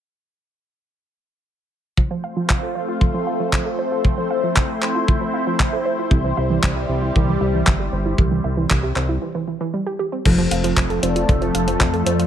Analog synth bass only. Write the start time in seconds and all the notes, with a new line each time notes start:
6.11 C2
6.37 C2
6.63 C2
6.89 C2
7.16 C2
7.41 C2
7.67 G1
7.92 G1
8.18 C2
8.44 C2
8.71 C2
8.96 C2
10.25 F1
10.51 F1
10.77 F1
11.03 F1
11.29 F1
11.55 F1
11.80 F2
12.06 F2